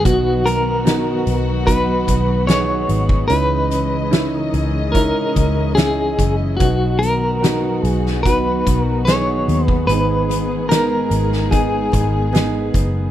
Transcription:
Already playing: string section D#3 B3, steel-string acoustic guitar B3 D#4 G#4
0.04 fingered electric bass B1, grand piano B2 B3 D#4 F#4, steel-string acoustic guitar B2, string section F#3 F#4, clean electric guitar F#4, kick, closed hi-hat
0.46 steel-string acoustic guitar B3, clean electric guitar A#4, closed hi-hat
0.84 grand piano B3 D#4 F#4, steel-string acoustic guitar D#4, snare, closed hi-hat
1.27 fingered electric bass B1, closed hi-hat
1.66 grand piano B3 D#4 F#4, steel-string acoustic guitar D#4, clean electric guitar B4, kick, closed hi-hat
2.07 fingered electric bass B1, steel-string acoustic guitar B3, kick, closed hi-hat
2.47 grand piano B3 D#4 G#4, steel-string acoustic guitar B4, clean electric guitar C#5, snare, closed hi-hat
2.89 fingered electric bass G#1, steel-string acoustic guitar B3, closed hi-hat
3.09 kick
3.28 fingered electric bass C#2, string section C#3 E3 G#3 D#5, grand piano C#3 C#4 D#4 E4, steel-string acoustic guitar C#3, clean electric guitar B4, closed hi-hat
3.71 steel-string acoustic guitar C#4, closed hi-hat
4.11 grand piano C#4 D#4 E4, steel-string acoustic guitar D#4, snare, closed hi-hat
4.38 clean electric guitar A#4
4.54 fingered electric bass C#2, steel-string acoustic guitar G#4, closed hi-hat
4.92 grand piano C#4 D#4 E4, steel-string acoustic guitar D#4, clean electric guitar A#4, kick, closed hi-hat
5.36 fingered electric bass C#2, steel-string acoustic guitar C#4, kick, closed hi-hat
5.75 grand piano C#4 D#4 E4, clean electric guitar G#4, steel-string acoustic guitar G#4, snare, closed hi-hat
6.18 fingered electric bass F#1, steel-string acoustic guitar C#4, kick, closed hi-hat
6.57 fingered electric bass B1, grand piano B2 B3 D#4 F#4, steel-string acoustic guitar B2, string section D#3 F#3 B3 F#4, clean electric guitar F#4, kick, closed hi-hat
6.99 steel-string acoustic guitar B3, clean electric guitar A#4, closed hi-hat
7.42 grand piano B3 D#4 F#4, steel-string acoustic guitar D#4, snare, closed hi-hat
7.84 fingered electric bass B1, clean electric guitar G#4, closed hi-hat
8.06 snare
8.23 grand piano B3 D#4 F#4, steel-string acoustic guitar D#4, clean electric guitar B4, kick, closed hi-hat
8.66 fingered electric bass B1, steel-string acoustic guitar B3, kick, closed hi-hat
8.82 clean electric guitar A#4
9.05 grand piano B3 D#4 G#4, steel-string acoustic guitar B4, clean electric guitar C#5, snare, closed hi-hat
9.48 fingered electric bass D#2, steel-string acoustic guitar B3, closed hi-hat
9.67 clean electric guitar B4, kick
9.87 fingered electric bass G#1, steel-string acoustic guitar G#2, grand piano G#2 B3 D#4 G#4, string section G#3 G#4, clean electric guitar B4, closed hi-hat
10.29 steel-string acoustic guitar B3, closed hi-hat
10.69 grand piano B3 D#4 A#4, steel-string acoustic guitar D#4, clean electric guitar A#4, snare, closed hi-hat
11.11 fingered electric bass G#1, closed hi-hat
11.32 snare
11.51 grand piano B3 D#4 G#4, steel-string acoustic guitar D#4, clean electric guitar G#4, kick, closed hi-hat
11.92 fingered electric bass G#1, steel-string acoustic guitar B3, kick, closed hi-hat
12.33 grand piano B3 D#4 G#4, steel-string acoustic guitar B4, snare, closed hi-hat
12.74 fingered electric bass F#1, steel-string acoustic guitar B3, kick, closed hi-hat

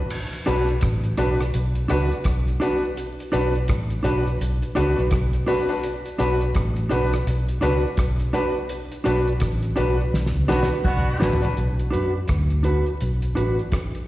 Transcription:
0.09 crash, cabasa
0.32 closed hi-hat, cabasa
0.46 fingered electric bass B1, clean electric guitar D4 F#4 B4, upright piano D4 F#4 B4, closed hi-hat, cabasa
0.66 closed hi-hat, cabasa
0.81 fingered electric bass A1, kick, cross-stick, closed hi-hat, cabasa
1.03 closed hi-hat, cabasa
1.17 fingered electric bass B1, clean electric guitar D4 F#4 B4, upright piano D4 F#4 B4, closed hi-hat, cabasa
1.39 cross-stick, cabasa
1.53 fingered electric bass B1, closed hi-hat, cabasa
1.75 closed hi-hat, cabasa
1.88 fingered electric bass C#2, clean electric guitar D4 F#4 B4, upright piano D4 F#4 B4, cross-stick, closed hi-hat, cabasa
2.11 upright piano F#4 B4, closed hi-hat, cabasa
2.24 fingered electric bass B1, kick, cross-stick, closed hi-hat, cabasa
2.48 closed hi-hat, cabasa
2.60 clean electric guitar D4 F#4 B4, upright piano D4 F#4 B4, closed hi-hat, cabasa
2.83 cabasa
2.96 closed hi-hat, cabasa
3.19 closed hi-hat, cabasa
3.32 fingered electric bass B1, clean electric guitar D4 F#4 B4, upright piano D4 F#4 B4, closed hi-hat, cabasa
3.54 closed hi-hat, cabasa
3.68 fingered electric bass A1, kick, cross-stick, closed hi-hat, cabasa
3.90 closed hi-hat, cabasa
4.03 fingered electric bass B1, clean electric guitar D4 F#4 B4, upright piano D4 F#4 B4, closed hi-hat, cabasa
4.25 muted clean electric guitar stroke, closed hi-hat, cabasa
4.41 fingered electric bass B1, closed hi-hat, cabasa
4.62 closed hi-hat, cabasa
4.75 fingered electric bass C#2, clean electric guitar D4 F#4 B4, upright piano D4 F#4 B4, closed hi-hat, cabasa
4.96 fingered electric bass B1, clean electric guitar D4 F#4 B4, closed hi-hat, cabasa
5.11 fingered electric bass B1, kick, cross-stick, closed hi-hat, cabasa
5.33 closed hi-hat, cabasa
5.47 clean electric guitar D4 F#4 B4, upright piano D4 F#4 B4, open hi-hat, cabasa
5.69 upright piano D4 F#4 B4, cabasa
5.83 closed hi-hat, cabasa
6.06 closed hi-hat, cabasa
6.18 fingered electric bass B1, clean electric guitar D4 F#4 B4, upright piano D4 F#4 B4, closed hi-hat, cabasa
6.41 closed hi-hat, cabasa
6.54 fingered electric bass A1, kick, cross-stick, closed hi-hat, cabasa
6.76 closed hi-hat, cabasa
6.89 fingered electric bass B1, clean electric guitar D4 F#4 B4, upright piano D4 F#4 B4, closed hi-hat, cabasa
7.13 cross-stick, closed hi-hat, cabasa
7.27 fingered electric bass B1, closed hi-hat, cabasa
7.49 closed hi-hat, cabasa
7.61 fingered electric bass C#2, clean electric guitar D4 F#4 B4, upright piano D4 F#4 B4, closed hi-hat, cabasa
7.84 upright piano F#4 B4, cabasa
7.97 fingered electric bass B1, kick, cross-stick, closed hi-hat, cabasa
8.20 closed hi-hat, cabasa
8.33 clean electric guitar D4 F#4 B4, upright piano D4 F#4 B4, closed hi-hat, cabasa
8.57 cabasa
8.69 closed hi-hat, cabasa
8.92 closed hi-hat, cabasa
9.04 fingered electric bass B1, clean electric guitar D4 F#4 B4, upright piano D4 F#4 B4, closed hi-hat, cabasa
9.27 closed hi-hat, cabasa
9.40 fingered electric bass A1, kick, cross-stick, closed hi-hat, cabasa
9.63 closed hi-hat, cabasa
9.76 fingered electric bass B1, clean electric guitar D4 F#4 B4, upright piano D4 F#4 B4, closed hi-hat, cabasa
9.97 muted clean electric guitar stroke, cabasa
10.13 fingered electric bass B1, snare, cabasa
10.26 snare
10.35 fingered electric bass C#2, cabasa
10.48 fingered electric bass B1, horn section B3 D4 F#4, upright piano D4 F#4 B4, clean electric guitar D4 F#4 B4, snare, cabasa
10.63 snare
10.70 clean electric guitar D4 F#4 B4, cabasa
10.85 fingered electric bass B1, horn section B3 D4 F#4, kick, mid tom, cabasa
10.97 mid tom
11.08 cabasa
11.20 fingered electric bass A1, clean electric guitar D4 F#4 B4, upright piano D4 F#4 B4, snare, cabasa
11.33 floor tom
11.42 upright piano D4 F#4 B4, floor tom, cabasa
11.57 fingered electric bass B1, closed hi-hat
11.79 closed hi-hat
11.90 fingered electric bass F#2, clean electric guitar D4 F#4 B4, closed hi-hat
12.28 fingered electric bass D2, kick, cross-stick, closed hi-hat
12.50 closed hi-hat
12.63 clean electric guitar D4 F#4 B4, closed hi-hat
12.86 closed hi-hat
13.01 fingered electric bass B1, closed hi-hat
13.22 closed hi-hat
13.35 fingered electric bass A1, clean electric guitar D4 F#4 B4, closed hi-hat
13.59 closed hi-hat
13.72 kick, cross-stick, closed hi-hat
13.95 closed hi-hat

